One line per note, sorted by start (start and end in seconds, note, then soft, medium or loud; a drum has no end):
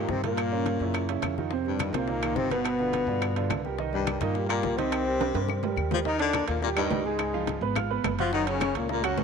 0.00 0.12 A#2 medium
0.00 0.19 D#3 medium
0.00 0.12 A#3 medium
0.00 0.19 D#4 medium
0.00 0.19 G4 medium
0.09 0.75 G2 medium
0.09 0.23 C3 medium
0.09 0.24 C4 loud
0.09 high bongo medium
0.09 low bongo medium
0.09 high conga medium
0.23 0.47 A#2 medium
0.23 1.33 A#2 medium
0.23 0.47 A#3 medium
0.23 1.34 A#3 loud
0.23 0.47 A#4 medium
0.23 high bongo soft
0.23 high conga medium
0.23 high timbale medium
0.37 high bongo medium
0.37 high conga soft
0.37 high timbale medium
0.37 claves medium
0.52 0.75 C#3 medium
0.52 0.75 C#4 medium
0.52 0.76 F4 medium
0.52 high bongo soft
0.52 high conga soft
0.66 high bongo medium
0.66 high conga medium
0.66 high timbale medium
0.80 1.20 F#2 medium
0.80 1.04 C#3 medium
0.80 1.04 C#4 medium
0.80 1.04 E4 medium
0.80 high bongo soft
0.80 high conga soft
0.94 high bongo medium
0.94 high conga soft
0.94 high timbale medium
0.94 claves medium
1.08 1.32 C#3 medium
1.08 1.32 C#4 medium
1.08 1.32 E4 medium
1.08 high bongo soft
1.08 high conga soft
1.08 high timbale medium
1.22 1.88 F2 medium
1.22 high bongo medium
1.22 low bongo medium
1.22 high conga medium
1.22 high timbale medium
1.22 claves medium
1.38 1.49 D#3 medium
1.38 1.49 D#4 medium
1.38 1.49 F4 medium
1.38 high conga medium
1.51 1.75 C3 medium
1.51 1.75 C4 medium
1.51 1.75 C5 medium
1.51 high bongo medium
1.51 high conga soft
1.65 1.97 G2 medium
1.65 1.96 G3 medium
1.65 high bongo soft
1.65 high conga soft
1.79 1.92 D#3 medium
1.79 1.92 D#4 medium
1.79 1.92 F4 medium
1.79 high bongo medium
1.79 high conga medium
1.79 high timbale medium
1.79 claves medium
1.93 2.33 C2 medium
1.93 2.38 A#2 medium
1.93 2.06 C3 medium
1.93 2.38 A#3 loud
1.93 2.06 C4 medium
1.93 2.06 C5 medium
1.93 high conga medium
1.93 high timbale medium
2.08 2.20 D#3 medium
2.08 2.20 D#4 medium
2.08 2.21 F4 medium
2.08 high bongo medium
2.08 high conga soft
2.22 2.46 D#3 medium
2.22 2.46 D#4 medium
2.22 2.47 F4 medium
2.22 high bongo soft
2.22 high conga soft
2.22 high timbale medium
2.22 claves medium
2.35 3.01 G1 medium
2.35 2.53 C3 medium
2.35 2.53 C4 loud
2.35 high bongo medium
2.35 low bongo medium
2.35 high conga medium
2.50 2.74 B2 medium
2.50 3.65 B2 medium
2.50 2.74 B3 medium
2.50 3.65 B3 loud
2.50 2.75 B4 medium
2.50 high bongo soft
2.50 high conga medium
2.50 high timbale medium
2.65 high bongo medium
2.65 high conga soft
2.65 high timbale medium
2.65 claves medium
2.79 3.03 D3 medium
2.79 3.03 D4 medium
2.79 3.03 F4 medium
2.79 high bongo soft
2.79 high conga soft
2.93 high bongo medium
2.93 high conga medium
2.93 high timbale medium
3.07 3.47 G2 medium
3.07 3.31 D3 medium
3.07 3.31 D4 medium
3.07 3.31 F4 medium
3.07 high bongo soft
3.07 high conga soft
3.22 high bongo medium
3.22 high conga soft
3.22 high timbale medium
3.22 claves medium
3.36 3.60 D3 medium
3.36 3.60 D4 medium
3.36 3.60 F4 medium
3.36 high bongo soft
3.36 high conga soft
3.36 high timbale medium
3.50 4.15 C2 medium
3.50 high bongo medium
3.50 low bongo medium
3.50 high conga medium
3.50 high timbale medium
3.50 low timbale medium
3.50 claves medium
3.65 3.77 G3 medium
3.65 3.77 G4 medium
3.65 3.77 A#4 medium
3.65 high conga medium
3.79 4.02 D#3 medium
3.79 4.02 D#4 medium
3.79 4.02 D#5 medium
3.79 high bongo medium
3.79 high conga soft
3.93 4.22 G2 medium
3.93 4.23 G3 medium
3.93 high bongo soft
3.93 high conga soft
4.07 4.19 G3 medium
4.07 4.19 G4 medium
4.07 4.19 A#4 medium
4.07 high bongo medium
4.07 high conga medium
4.07 high timbale medium
4.07 claves medium
4.21 4.61 G2 medium
4.21 4.48 A#2 medium
4.21 4.33 D#3 medium
4.21 4.48 A#3 medium
4.21 4.33 D#4 medium
4.21 4.33 D#5 medium
4.21 high conga medium
4.21 high timbale medium
4.35 4.47 G3 medium
4.35 4.47 G4 medium
4.35 4.48 A#4 medium
4.35 high bongo medium
4.49 4.79 A#2 medium
4.49 4.73 G3 medium
4.49 4.79 A#3 medium
4.49 4.73 G4 medium
4.49 4.73 A#4 medium
4.49 high bongo soft
4.49 high conga soft
4.49 high timbale medium
4.49 claves medium
4.63 5.29 C2 medium
4.63 high bongo medium
4.63 low bongo medium
4.63 high conga medium
4.77 5.77 C3 medium
4.77 5.01 D#3 medium
4.77 5.77 C4 loud
4.77 5.01 D#4 medium
4.77 5.02 D#5 medium
4.77 high bongo soft
4.77 high conga medium
4.77 high timbale medium
4.92 high bongo medium
4.92 high conga soft
4.92 high timbale medium
4.92 claves medium
5.06 5.30 G3 medium
5.06 5.30 G4 medium
5.06 5.30 A#4 medium
5.06 high bongo soft
5.06 high conga soft
5.21 high bongo medium
5.21 high conga medium
5.21 high timbale medium
5.34 5.74 G2 medium
5.34 5.58 G3 medium
5.34 5.58 G4 medium
5.34 5.59 A#4 medium
5.34 high bongo medium
5.34 high conga soft
5.34 high timbale medium
5.48 high bongo medium
5.48 high conga soft
5.48 claves medium
5.63 5.87 G3 medium
5.63 5.86 G4 medium
5.63 5.87 A#4 medium
5.63 low bongo medium
5.63 high conga soft
5.63 low timbale medium
5.76 6.42 D#2 medium
5.76 high conga medium
5.76 claves medium
5.91 5.99 F3 medium
5.91 6.04 G3 medium
5.91 5.98 F4 medium
5.91 6.04 G4 medium
5.91 6.04 A#4 medium
5.91 low bongo medium
5.91 high conga medium
5.91 low timbale medium
6.05 6.29 D#3 medium
6.05 6.20 D#3 medium
6.05 6.19 D#4 loud
6.05 6.29 D#4 medium
6.05 6.29 D#5 medium
6.05 high bongo medium
6.20 6.47 D3 medium
6.20 6.46 D4 loud
6.20 high bongo soft
6.20 high conga soft
6.20 high timbale medium
6.33 6.57 A#3 medium
6.33 6.58 A#4 medium
6.33 6.58 A#5 medium
6.33 high bongo medium
6.33 high conga medium
6.33 high timbale medium
6.33 low timbale medium
6.33 claves medium
6.48 6.88 D#2 medium
6.48 6.62 A#2 medium
6.48 6.61 A#3 medium
6.48 high bongo soft
6.48 high conga soft
6.48 high timbale medium
6.62 6.69 A#2 medium
6.62 6.75 G3 medium
6.62 6.68 A#3 medium
6.62 6.75 G4 medium
6.62 6.75 G5 medium
6.62 high bongo medium
6.62 high conga soft
6.77 7.07 G2 medium
6.77 7.01 D#3 medium
6.77 7.07 G3 medium
6.77 7.01 D#4 medium
6.77 7.01 D#5 medium
6.77 high conga soft
6.77 high timbale medium
6.77 claves medium
6.90 7.56 C#2 medium
6.90 high bongo soft
6.90 low bongo medium
6.90 high conga medium
6.90 low timbale medium
7.05 7.62 G#2 medium
7.05 7.62 G#3 medium
7.05 7.29 G#3 medium
7.05 7.29 G#4 medium
7.05 7.29 G#5 medium
7.05 high bongo soft
7.05 high conga soft
7.19 high bongo medium
7.19 high conga soft
7.19 high timbale medium
7.19 claves medium
7.33 7.57 F3 medium
7.33 7.57 F4 medium
7.33 7.57 F5 medium
7.33 high bongo soft
7.33 high conga soft
7.47 high bongo medium
7.47 high conga medium
7.47 high timbale medium
7.47 low timbale medium
7.61 8.01 G#1 loud
7.61 7.73 B3 medium
7.61 7.74 B4 medium
7.61 7.74 B5 medium
7.61 high bongo soft
7.61 high conga soft
7.76 7.88 F4 medium
7.76 7.88 F5 medium
7.76 7.88 F6 medium
7.76 high bongo medium
7.76 high conga soft
7.76 low conga medium
7.76 high timbale medium
7.76 claves medium
7.90 8.14 B3 medium
7.90 8.14 B4 medium
7.90 8.14 B5 medium
7.90 high conga soft
8.04 8.70 F#1 medium
8.04 high bongo soft
8.04 low bongo medium
8.04 high conga medium
8.04 high timbale loud
8.04 low timbale medium
8.04 claves medium
8.18 8.32 F3 medium
8.18 8.33 F4 loud
8.18 8.31 F#4 medium
8.18 8.31 F#5 medium
8.18 8.31 F#6 medium
8.18 high bongo soft
8.18 high conga medium
8.18 high timbale medium
8.33 8.49 D#3 medium
8.33 8.57 F#3 medium
8.33 8.50 D#4 loud
8.33 8.57 F#4 medium
8.33 8.57 F#5 medium
8.33 high bongo medium
8.33 high conga soft
8.47 8.76 C#3 medium
8.47 8.76 C#4 loud
8.47 high bongo soft
8.47 high conga soft
8.47 high timbale medium
8.61 8.85 C#4 medium
8.61 8.85 C#5 medium
8.61 8.85 C#6 medium
8.61 high bongo medium
8.61 high conga loud
8.61 high timbale loud
8.61 low timbale medium
8.61 claves medium
8.75 9.15 C#2 medium
8.75 8.90 A#2 medium
8.75 8.90 A#3 medium
8.75 high bongo soft
8.75 high conga soft
8.75 high timbale medium
8.89 9.07 A#2 medium
8.89 9.01 A#3 medium
8.89 9.07 A#3 medium
8.89 9.02 A#4 medium
8.89 9.02 A#5 medium
8.89 high bongo medium
8.89 high conga soft
9.04 9.24 F#2 medium
9.04 9.24 F#3 medium
9.04 9.24 F#4 medium
9.04 9.24 F#5 medium
9.04 high conga soft
9.04 high timbale loud
9.04 claves medium
9.17 9.24 D#2 medium
9.17 high bongo soft
9.17 low bongo medium
9.17 high conga medium
9.17 low timbale medium